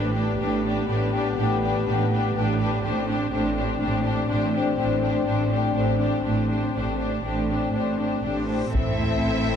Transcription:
Already playing: A1 A2 B3 D4 G4 B4
0.14 D4 G4 B4
0.40 A1 A2 D4 G4 B4
0.64 D4 G4 B4
0.88 A1 A2 D4 G4 B4
1.13 D4 G4 B4
1.38 A1 A2 D4 G4 B4
1.63 D4 G4 B4
1.86 A1 A2 D4 G4 B4
2.11 D4 G4 B4
2.36 A1 A2 D4 G4 B4
2.60 D4 G4 B4
2.84 A1 A2 C4 D4 G4 C5
3.08 D4 G4 C5
3.32 A1 A2 D4 G4 C5
3.57 D4 G4 C5
3.79 A1 A2 D4 C5
3.83 G4
4.04 D4 G4 C5
4.29 A1 A2 D4 G4 C5
4.54 D4 G4 C5
4.78 A1 A2 D4 G4 C5
5.02 D4 G4 C5
5.25 A1 A2 D4 G4 C5
5.49 D4 G4
5.53 C5
5.73 A1 A2 D4 C5
5.77 G4
5.98 D4 G4 C5
6.23 A1 A2 D4 G4 C5
6.48 D4 G4 C5
6.74 A1 A2 D4 G4 C5
7.00 D4 G4 C5
7.24 A1 A2 C4 D4 G4 C5, reverse cymbal
7.48 D4 G4 C5
7.73 A1 A2 D4 G4 C5
7.99 D4 G4 C5
8.23 A1 A2 D4 G4 C5
8.49 D4 G4 C5
8.73 A1 A2 C4 E4 A4 C5 E5, taiko, sub drop

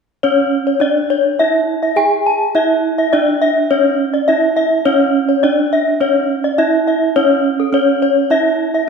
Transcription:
0.23 C#4 C#5
0.67 C#5
0.80 D4 D5
1.10 C#5
1.39 E4 E5
1.83 E5
1.96 G#4 G#5
2.26 A5
2.55 E4 E5
2.98 E5
3.13 D4 D5
3.42 E5
3.71 C#4 C#5
4.14 D5
4.28 E4 E5
4.57 E5
4.85 C#4 C#5
5.29 C#5
5.43 D4 D5
5.73 E5
6.01 C#4 C#5
6.44 D5
6.58 E4 E5
6.88 E5
7.16 C#4 C#5
7.60 A4
7.73 C#4 C#5
8.02 C#5
8.30 E4 E5
8.74 E5

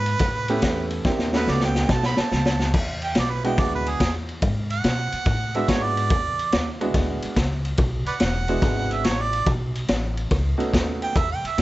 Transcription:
Already playing: G#2 B4
0.06 ride
0.19 A2, kick, snare, ride
0.48 A3 B3 C#4 E4 G4, ride
0.62 E2, kick, snare, ride
0.90 ride
1.05 D#2 A#3 C4 D4 E4 G4, kick, snare
1.19 snare
1.33 A3 B3 C#4 D#4 F#4 B4, snare
1.47 C#2 D5, snare
1.60 G5, snare
1.75 snare
1.89 B1 A5, kick, snare
2.03 B5, snare
2.17 A5, muted upright bass stroke, snare
2.31 C#2, snare
2.46 snare
2.60 snare
2.74 E2, kick, crash
3.02 G5, ride
3.15 B1 D5, snare, ride
3.31 B4
3.44 G#3 B3 D4 E4 F#4 G5, ride
3.58 D2 D5, kick, snare, ride
3.75 B4
3.86 G#4, ride
4.00 E2, kick, snare, ride
4.29 ride
4.42 G#2, kick, ride
4.70 F#5, ride
4.84 B2, snare, ride
5.12 muted upright bass stroke, ride
5.25 A2, kick, ride
5.54 G#3 B3 D4 E4 F#4 E5, ride
5.68 G#2 C#5, kick, snare, ride
5.83 D5
5.97 ride
6.10 E2, kick, ride
6.39 ride
6.52 D#2, snare, ride
6.81 G#3 B3 D4 E4 F#4, ride
6.94 D2, kick, snare, ride
7.22 muted upright bass stroke, ride
7.36 C#2, kick, snare, ride
7.65 ride
7.77 B1, kick, ride
8.06 B4 D5 F#5, muted upright bass stroke, ride
8.20 E1, snare, ride
8.48 G#3 B3 D4 E4 F#4, ride
8.62 G#1, kick, snare, ride
8.91 E5, ride
9.04 A1 C#5, snare, ride
9.21 D5
9.33 ride
9.46 B1, kick, ride
9.75 ride
9.88 A1, snare, ride
10.17 ride
10.31 C#2, kick, snare, ride
10.58 A3 B3 C#4 D#4 F#4, ride
10.73 D#2, kick, snare, ride
11.02 G5, ride
11.15 E2 E5, kick, ride
11.31 G5
11.44 E5, muted upright bass stroke, ride
11.58 F#2, snare, ride

